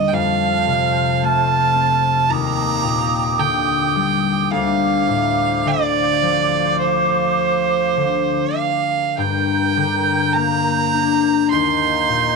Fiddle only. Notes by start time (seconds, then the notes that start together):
0.08 G5
0.14 F5
1.25 A5
2.30 A#5
3.40 G5
4.51 F5
5.67 D5
6.79 C5
8.57 F5
9.17 G5
10.33 A#5
11.50 C6